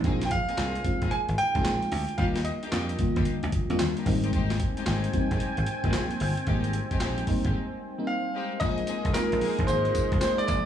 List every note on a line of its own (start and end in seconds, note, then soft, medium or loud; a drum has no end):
0.04 0.36 A#1 loud
0.04 0.56 G#3 medium
0.04 0.21 A#3 medium
0.04 0.21 C4 medium
0.04 0.56 C4 medium
0.04 0.13 D4 medium
0.04 0.21 D#4 medium
0.04 0.57 F4 medium
0.04 0.21 G#4 medium
0.04 kick loud
0.04 closed hi-hat medium
0.11 0.60 D#4 medium
0.21 0.30 G5 medium
0.21 snare medium
0.21 closed hi-hat medium
0.31 1.14 F5 loud
0.31 kick medium
0.31 closed hi-hat medium
0.48 0.56 A#3 medium
0.48 0.56 C4 medium
0.48 0.56 D#4 medium
0.48 0.57 G#4 medium
0.48 closed hi-hat soft
0.57 0.77 C2 medium
0.57 0.74 A#3 medium
0.57 0.74 C4 medium
0.57 0.74 D#4 medium
0.57 0.75 G#4 medium
0.57 snare loud
0.57 clap medium
0.57 closed hi-hat medium
0.75 closed hi-hat medium
0.84 1.30 G#3 medium
0.84 1.30 C4 medium
0.84 1.31 D#4 medium
0.84 1.31 F4 medium
0.84 kick loud
0.84 closed hi-hat medium
1.01 1.09 A#1 medium
1.01 1.11 A#3 medium
1.01 1.11 C4 medium
1.01 1.11 D#4 medium
1.01 1.11 G#4 medium
1.01 kick medium
1.01 closed hi-hat medium
1.11 1.17 G#5 loud
1.11 closed hi-hat medium
1.28 1.35 G#1 medium
1.28 closed hi-hat soft
1.38 2.21 G5 loud
1.38 closed hi-hat medium
1.55 1.62 C2 medium
1.55 1.95 G#3 medium
1.55 1.64 A#3 medium
1.55 1.65 C4 medium
1.55 1.95 C4 medium
1.55 1.65 D#4 medium
1.55 1.95 D#4 medium
1.55 1.96 F4 medium
1.55 1.65 G#4 medium
1.55 kick loud
1.55 closed hi-hat medium
1.65 1.77 A#1 medium
1.65 snare loud
1.65 clap medium
1.65 closed hi-hat medium
1.82 closed hi-hat soft
1.92 2.04 D2 medium
1.92 open hi-hat medium
2.09 closed hi-hat soft
2.18 2.50 D#2 loud
2.18 2.70 G3 medium
2.18 2.35 A#3 medium
2.18 2.71 A#3 medium
2.18 2.35 D4 medium
2.18 2.71 D4 medium
2.18 2.35 D#4 medium
2.18 2.71 F4 medium
2.18 2.35 G4 loud
2.18 2.24 F5 medium
2.18 kick loud
2.18 closed hi-hat medium
2.36 snare medium
2.36 closed hi-hat soft
2.45 3.48 D#5 medium
2.45 closed hi-hat medium
2.62 2.71 A#3 medium
2.62 2.71 D4 medium
2.62 2.71 D#4 medium
2.62 2.72 G4 medium
2.62 closed hi-hat soft
2.72 2.92 F2 medium
2.72 2.89 A#3 medium
2.72 2.89 D4 medium
2.72 2.89 D#4 medium
2.72 2.89 G4 medium
2.72 snare loud
2.72 clap medium
2.72 closed hi-hat medium
2.89 closed hi-hat medium
2.99 3.45 D3 medium
2.99 3.45 G3 medium
2.99 3.45 A#3 medium
2.99 3.45 F4 medium
2.99 kick loud
2.99 closed hi-hat medium
3.16 3.23 D#2 medium
3.16 3.25 A#3 medium
3.16 3.25 D4 medium
3.16 3.26 D#4 medium
3.16 3.26 G4 medium
3.16 kick loud
3.16 closed hi-hat medium
3.25 closed hi-hat medium
3.43 3.50 D2 medium
3.43 closed hi-hat soft
3.52 kick medium
3.52 closed hi-hat medium
3.70 3.77 F2 medium
3.70 4.05 G3 medium
3.70 4.06 A#3 medium
3.70 4.06 D4 medium
3.70 4.07 F4 loud
3.70 closed hi-hat medium
3.79 3.92 D#2 loud
3.79 snare loud
3.79 clap medium
3.79 closed hi-hat medium
3.97 4.06 A#3 medium
3.97 4.06 D4 medium
3.97 4.06 D#4 medium
3.97 4.06 G4 medium
3.97 closed hi-hat medium
4.06 4.57 G#1 loud
4.06 4.94 G3 loud
4.06 4.94 A#3 medium
4.06 4.94 C4 medium
4.06 4.94 D#4 loud
4.06 kick loud
4.06 open hi-hat medium
4.24 4.32 G#3 medium
4.24 4.32 C4 medium
4.24 4.32 D#4 medium
4.24 4.33 G4 medium
4.24 closed hi-hat medium
4.33 4.50 G#3 medium
4.33 4.50 C4 medium
4.33 8.58 C4 medium
4.33 4.50 D#4 medium
4.33 4.50 G4 loud
4.33 8.58 G5 medium
4.33 8.58 G#5 medium
4.33 kick loud
4.33 closed hi-hat medium
4.50 snare medium
4.50 closed hi-hat soft
4.60 kick medium
4.60 closed hi-hat medium
4.77 4.85 G#3 medium
4.77 4.85 C4 medium
4.77 4.86 D#4 medium
4.77 4.86 G4 medium
4.77 closed hi-hat soft
4.86 5.06 G#1 medium
4.86 5.03 G#3 medium
4.86 5.03 C4 medium
4.86 5.03 D#4 medium
4.86 5.03 G4 medium
4.86 snare loud
4.86 clap medium
4.86 closed hi-hat medium
5.04 closed hi-hat medium
5.13 5.59 G3 medium
5.13 5.59 A#3 medium
5.13 5.59 C4 medium
5.13 5.59 D#4 loud
5.13 kick loud
5.13 closed hi-hat medium
5.31 5.38 A#1 medium
5.31 5.40 G#3 medium
5.31 5.40 C4 medium
5.31 5.40 D#4 medium
5.31 5.40 G4 medium
5.31 kick medium
5.31 closed hi-hat medium
5.40 closed hi-hat medium
5.57 5.64 G#1 medium
5.57 closed hi-hat soft
5.66 closed hi-hat medium
5.84 5.91 G1 medium
5.84 6.23 G3 medium
5.84 5.93 G#3 medium
5.84 6.23 A#3 medium
5.84 5.93 C4 medium
5.84 6.24 C4 medium
5.84 5.94 D#4 medium
5.84 6.24 D#4 loud
5.84 5.94 G4 medium
5.84 kick loud
5.84 closed hi-hat soft
5.93 6.06 A#1 loud
5.93 snare loud
5.93 clap medium
5.93 closed hi-hat medium
6.11 closed hi-hat medium
6.20 6.33 G1 loud
6.20 open hi-hat medium
6.37 closed hi-hat soft
6.47 6.79 G#1 loud
6.47 6.99 G3 medium
6.47 6.64 G#3 medium
6.47 6.99 A#3 medium
6.47 6.64 C4 medium
6.47 6.99 C4 medium
6.47 6.64 D#4 medium
6.47 6.99 D#4 medium
6.47 6.64 G4 loud
6.47 kick loud
6.47 closed hi-hat medium
6.64 closed hi-hat medium
6.73 closed hi-hat medium
6.91 7.00 G#3 medium
6.91 7.00 C4 medium
6.91 7.00 D#4 medium
6.91 7.01 G4 medium
6.91 kick medium
6.91 closed hi-hat medium
7.00 7.20 A#1 loud
7.00 7.18 G#3 medium
7.00 7.18 C4 medium
7.00 7.18 D#4 medium
7.00 7.18 G4 medium
7.00 snare medium
7.00 clap medium
7.00 closed hi-hat medium
7.18 closed hi-hat medium
7.27 7.73 G3 medium
7.27 7.73 A#3 medium
7.27 7.74 C4 medium
7.27 7.74 D#4 loud
7.27 kick loud
7.27 open hi-hat medium
7.44 7.52 G#1 medium
7.44 7.54 G#3 medium
7.44 7.54 C4 medium
7.44 7.54 D#4 medium
7.44 7.54 G4 medium
7.44 kick medium
7.44 closed hi-hat medium
7.98 8.38 G3 medium
7.98 8.38 A#3 medium
7.98 8.38 C4 medium
7.98 8.38 D#4 loud
8.07 8.57 F5 medium
8.34 8.51 G#3 medium
8.34 8.51 C4 medium
8.34 8.51 D#4 medium
8.34 8.51 G4 medium
8.60 8.81 A#1 loud
8.60 10.65 G#3 medium
8.60 8.98 G#3 medium
8.60 10.65 A#3 medium
8.60 8.78 A#3 medium
8.60 8.78 C4 medium
8.60 8.98 C4 medium
8.60 10.65 D#4 medium
8.60 8.78 D#4 medium
8.60 8.98 D#4 medium
8.60 8.98 F4 medium
8.60 8.78 G#4 loud
8.60 9.10 D#5 loud
8.60 kick loud
8.60 closed hi-hat medium
8.60 tambourine medium
8.78 closed hi-hat soft
8.87 9.05 A#3 medium
8.87 9.05 C4 medium
8.87 9.05 D#4 medium
8.87 9.05 G#4 medium
8.87 closed hi-hat medium
8.87 tambourine medium
9.05 9.12 C2 medium
9.05 kick medium
9.05 closed hi-hat medium
9.13 9.87 G#3 medium
9.13 9.87 C4 medium
9.13 9.87 D#4 medium
9.13 9.87 F4 medium
9.13 9.64 A#4 medium
9.13 snare loud
9.13 clap medium
9.13 closed hi-hat medium
9.13 tambourine medium
9.32 9.39 A#1 medium
9.32 closed hi-hat medium
9.41 9.58 A#3 medium
9.41 9.58 C4 medium
9.41 9.58 D#4 medium
9.41 9.59 G#4 medium
9.41 open hi-hat medium
9.59 9.66 A#1 medium
9.59 kick loud
9.59 closed hi-hat medium
9.67 9.88 G#1 medium
9.67 10.19 C5 medium
9.67 closed hi-hat medium
9.67 tambourine medium
9.85 closed hi-hat soft
9.95 kick medium
9.95 closed hi-hat medium
9.95 tambourine medium
10.12 10.19 C2 loud
10.12 kick loud
10.12 closed hi-hat soft
10.21 10.39 C5 medium
10.21 snare loud
10.21 clap medium
10.21 closed hi-hat medium
10.21 tambourine medium
10.38 10.46 D5 medium
10.38 closed hi-hat medium
10.47 10.61 A#1 loud
10.47 10.65 D5 loud
10.47 kick medium
10.47 closed hi-hat medium
10.47 tambourine medium